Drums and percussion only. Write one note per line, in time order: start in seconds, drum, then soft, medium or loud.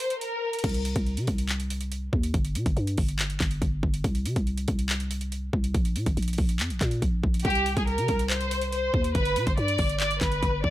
0.00 closed hi-hat medium
0.10 closed hi-hat soft
0.21 closed hi-hat medium
0.53 closed hi-hat soft
0.59 closed hi-hat soft
0.64 kick loud
0.64 closed hi-hat medium
0.64 crash medium
0.69 closed hi-hat medium
0.74 closed hi-hat medium
0.85 closed hi-hat medium
0.96 kick loud
0.96 closed hi-hat medium
1.06 closed hi-hat soft
1.17 closed hi-hat medium
1.27 kick loud
1.27 closed hi-hat medium
1.38 closed hi-hat medium
1.49 clap loud
1.49 closed hi-hat medium
1.60 closed hi-hat soft
1.70 closed hi-hat medium
1.81 closed hi-hat medium
1.92 closed hi-hat medium
2.13 kick medium
2.23 closed hi-hat medium
2.34 kick loud
2.34 closed hi-hat medium
2.45 closed hi-hat medium
2.55 closed hi-hat medium
2.66 kick loud
2.66 closed hi-hat medium
2.77 closed hi-hat soft
2.87 closed hi-hat medium
2.98 kick loud
2.98 open hi-hat medium
3.09 closed hi-hat medium
3.19 clap loud
3.19 closed hi-hat medium
3.30 closed hi-hat soft
3.40 kick medium
3.40 clap medium
3.40 closed hi-hat medium
3.51 closed hi-hat medium
3.62 kick medium
3.62 closed hi-hat medium
3.83 kick medium
3.94 closed hi-hat medium
4.04 kick loud
4.04 closed hi-hat medium
4.15 closed hi-hat medium
4.26 closed hi-hat medium
4.36 kick loud
4.36 closed hi-hat medium
4.47 closed hi-hat soft
4.57 closed hi-hat medium
4.68 kick loud
4.68 closed hi-hat medium
4.79 closed hi-hat medium
4.89 clap loud
4.89 closed hi-hat medium
5.00 closed hi-hat soft
5.11 closed hi-hat medium
5.21 closed hi-hat soft
5.32 closed hi-hat medium
5.53 kick loud
5.64 closed hi-hat medium
5.74 kick loud
5.74 closed hi-hat medium
5.85 closed hi-hat medium
5.96 closed hi-hat medium
6.06 kick loud
6.06 closed hi-hat medium
6.17 closed hi-hat medium
6.22 closed hi-hat soft
6.28 closed hi-hat soft
6.33 closed hi-hat soft
6.38 kick loud
6.38 open hi-hat medium
6.49 closed hi-hat medium
6.60 clap loud
6.60 closed hi-hat medium
6.70 closed hi-hat soft
6.81 kick medium
6.81 clap medium
6.81 closed hi-hat medium
6.91 closed hi-hat medium
7.02 kick medium
7.02 closed hi-hat medium
7.24 kick medium
7.34 closed hi-hat soft
7.40 closed hi-hat medium
7.45 kick loud
7.45 closed hi-hat medium
7.50 closed hi-hat medium
7.55 closed hi-hat medium
7.66 closed hi-hat medium
7.77 kick loud
7.77 closed hi-hat medium
7.87 closed hi-hat soft
7.98 closed hi-hat medium
8.08 kick loud
8.08 closed hi-hat medium
8.19 closed hi-hat medium
8.30 clap loud
8.30 closed hi-hat medium
8.41 closed hi-hat soft
8.51 closed hi-hat medium
8.61 closed hi-hat medium
8.72 closed hi-hat medium
8.94 kick medium
9.04 closed hi-hat medium
9.15 kick loud
9.15 closed hi-hat medium
9.25 closed hi-hat medium
9.36 closed hi-hat medium
9.47 kick loud
9.47 closed hi-hat medium
9.58 closed hi-hat soft
9.68 closed hi-hat medium
9.78 kick loud
9.78 open hi-hat medium
9.89 closed hi-hat medium
10.00 clap loud
10.00 closed hi-hat medium
10.11 closed hi-hat soft
10.21 kick medium
10.21 clap medium
10.21 closed hi-hat medium
10.32 closed hi-hat medium
10.43 kick medium
10.43 closed hi-hat medium
10.64 kick loud